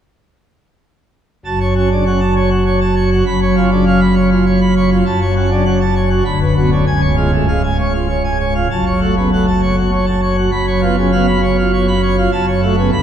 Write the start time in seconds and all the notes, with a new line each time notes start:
1.45 F#1 F#2 A5
1.60 C#5
1.75 C#4 F#4
1.91 C#3 D4
2.06 C#4 F#5
2.21 A5
2.36 C#5
2.50 F#4
2.66 C#5
2.81 A5
2.96 C#5
3.12 F#4
3.26 F#1 F#2 B5
3.42 C#5
3.56 C#4 F4
3.71 C#3 D4
3.87 C#4 F5
4.01 B5
4.16 C#5
4.31 F4
4.46 C#5
4.60 B5
4.76 C#5
4.91 F4
5.06 F#1 F#2 A5
5.21 C#5
5.36 C#4 F#4
5.51 C#3 D4
5.66 C#4 F#5
5.81 A5
5.96 C#5
6.10 F#4
6.25 D1 D2 B5
6.41 B4
6.57 B3 F#4
6.72 D3 C#4
6.87 C#1 C#2 G#5
7.02 C#5
7.17 G#3 F4
7.32 G#2 A3
7.48 G#3 F5
7.64 G#5
7.80 C#5
7.94 F4
8.09 C#5
8.24 G#5
8.40 C#5
8.55 F4
8.71 F#1 F#2 A5
8.86 C#5
9.01 A3 F#4
9.17 C#3 B3
9.33 A3 F#5
9.47 A5
9.62 C#5
9.77 F#4
9.92 C#5
10.06 A5
10.23 C#5
10.38 F#4
10.52 F#1 F#2 B5
10.67 C#5
10.82 B3 F4
10.97 C#3 C#4
11.12 B3 F5
11.28 B5
11.43 C#5
11.59 F4
11.73 C#5
11.88 B5
12.03 C#5
12.18 F4
12.32 F#1 F#2 A5
12.48 C#5
12.62 A3 F#4
12.77 C#3 B3
12.93 D1 D2 B5